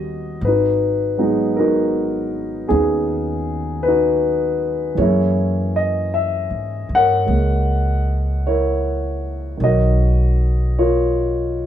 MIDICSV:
0, 0, Header, 1, 3, 480
1, 0, Start_track
1, 0, Tempo, 1140684
1, 175, Time_signature, 4, 2, 24, 8
1, 2576, Tempo, 1153846
1, 4881, End_track
2, 0, Start_track
2, 0, Title_t, "Grand piano"
2, 0, Program_c, 0, 0
2, 0, Control_c, 0, 64, 127
2, 0, Note_on_c, 0, 55, 40
2, 0, Note_on_c, 0, 59, 34
2, 0, Note_on_c, 0, 61, 34
2, 0, Note_on_c, 0, 66, 49
2, 0, Note_on_c, 0, 67, 46
2, 0, Note_on_c, 0, 75, 65
2, 0, Note_on_c, 0, 78, 41
2, 168, Note_off_c, 0, 55, 0
2, 169, Note_off_c, 0, 66, 0
2, 171, Note_off_c, 0, 67, 0
2, 175, Note_off_c, 0, 59, 0
2, 182, Control_c, 0, 64, 0
2, 183, Note_off_c, 0, 61, 0
2, 188, Note_on_c, 0, 71, 60
2, 190, Note_off_c, 0, 78, 0
2, 196, Note_off_c, 0, 75, 0
2, 201, Note_on_c, 0, 63, 43
2, 202, Note_on_c, 0, 66, 42
2, 261, Control_c, 0, 64, 127
2, 495, Note_on_c, 0, 54, 45
2, 497, Note_off_c, 0, 63, 0
2, 500, Note_on_c, 0, 56, 40
2, 500, Note_on_c, 0, 59, 42
2, 503, Note_on_c, 0, 63, 51
2, 658, Note_on_c, 0, 70, 65
2, 664, Note_off_c, 0, 63, 0
2, 664, Note_off_c, 0, 66, 0
2, 671, Note_on_c, 0, 63, 48
2, 671, Note_on_c, 0, 66, 49
2, 676, Note_off_c, 0, 71, 0
2, 1119, Note_off_c, 0, 70, 0
2, 1121, Note_off_c, 0, 59, 0
2, 1127, Note_on_c, 0, 59, 33
2, 1130, Note_on_c, 0, 68, 67
2, 1132, Note_off_c, 0, 63, 0
2, 1133, Note_on_c, 0, 61, 31
2, 1138, Note_on_c, 0, 63, 38
2, 1139, Note_off_c, 0, 59, 0
2, 1145, Note_on_c, 0, 59, 45
2, 1594, Note_off_c, 0, 68, 0
2, 1604, Note_off_c, 0, 66, 0
2, 1611, Note_on_c, 0, 71, 67
2, 1627, Note_off_c, 0, 63, 0
2, 1632, Note_on_c, 0, 66, 48
2, 1633, Note_on_c, 0, 63, 49
2, 2082, Note_off_c, 0, 59, 0
2, 2082, Note_on_c, 0, 52, 41
2, 2086, Note_off_c, 0, 66, 0
2, 2087, Note_off_c, 0, 63, 0
2, 2092, Note_off_c, 0, 54, 0
2, 2092, Note_on_c, 0, 68, 36
2, 2093, Note_off_c, 0, 61, 0
2, 2094, Note_off_c, 0, 56, 0
2, 2095, Note_on_c, 0, 73, 64
2, 2097, Note_on_c, 0, 58, 37
2, 2099, Control_c, 0, 64, 0
2, 2102, Note_on_c, 0, 61, 44
2, 2107, Note_off_c, 0, 71, 0
2, 2110, Note_on_c, 0, 64, 49
2, 2110, Note_on_c, 0, 70, 47
2, 2184, Control_c, 0, 64, 127
2, 2424, Note_on_c, 0, 75, 62
2, 2428, Note_off_c, 0, 73, 0
2, 2583, Note_off_c, 0, 75, 0
2, 2583, Note_on_c, 0, 76, 71
2, 2912, Note_off_c, 0, 76, 0
2, 2918, Note_off_c, 0, 70, 0
2, 2920, Note_on_c, 0, 78, 85
2, 2924, Note_on_c, 0, 70, 49
2, 2928, Note_on_c, 0, 73, 47
2, 3046, Note_off_c, 0, 64, 0
2, 3048, Note_on_c, 0, 56, 31
2, 3056, Note_off_c, 0, 58, 0
2, 3062, Note_on_c, 0, 58, 33
2, 3373, Note_off_c, 0, 78, 0
2, 3545, Note_off_c, 0, 73, 0
2, 3549, Note_off_c, 0, 70, 0
2, 3552, Note_on_c, 0, 73, 62
2, 3554, Note_on_c, 0, 64, 46
2, 3556, Note_on_c, 0, 70, 48
2, 4011, Note_on_c, 0, 51, 38
2, 4012, Note_off_c, 0, 64, 0
2, 4013, Note_off_c, 0, 70, 0
2, 4014, Note_off_c, 0, 52, 0
2, 4017, Note_off_c, 0, 56, 0
2, 4019, Note_off_c, 0, 68, 0
2, 4024, Note_off_c, 0, 58, 0
2, 4024, Note_off_c, 0, 61, 0
2, 4026, Note_off_c, 0, 73, 0
2, 4026, Control_c, 0, 64, 0
2, 4032, Note_on_c, 0, 73, 43
2, 4037, Note_on_c, 0, 70, 46
2, 4038, Note_on_c, 0, 75, 65
2, 4040, Note_on_c, 0, 66, 47
2, 4092, Control_c, 0, 64, 127
2, 4510, Note_off_c, 0, 73, 0
2, 4511, Note_off_c, 0, 70, 0
2, 4516, Note_on_c, 0, 73, 66
2, 4517, Note_on_c, 0, 65, 48
2, 4517, Note_on_c, 0, 70, 47
2, 4521, Note_off_c, 0, 75, 0
2, 4881, Note_off_c, 0, 51, 0
2, 4881, Note_off_c, 0, 65, 0
2, 4881, Note_off_c, 0, 66, 0
2, 4881, Note_off_c, 0, 70, 0
2, 4881, Note_off_c, 0, 73, 0
2, 4881, End_track
3, 0, Start_track
3, 0, Title_t, "Upright bass"
3, 0, Program_c, 1, 32
3, 0, Note_on_c, 1, 39, 63
3, 161, Note_off_c, 1, 39, 0
3, 174, Note_on_c, 1, 32, 63
3, 1116, Note_off_c, 1, 32, 0
3, 1138, Note_on_c, 1, 39, 65
3, 2078, Note_off_c, 1, 39, 0
3, 2093, Note_on_c, 1, 42, 64
3, 2718, Note_off_c, 1, 42, 0
3, 2735, Note_on_c, 1, 44, 40
3, 2883, Note_off_c, 1, 44, 0
3, 2896, Note_on_c, 1, 43, 48
3, 3044, Note_off_c, 1, 43, 0
3, 3057, Note_on_c, 1, 37, 57
3, 4004, Note_off_c, 1, 37, 0
3, 4023, Note_on_c, 1, 35, 63
3, 4881, Note_off_c, 1, 35, 0
3, 4881, End_track
0, 0, End_of_file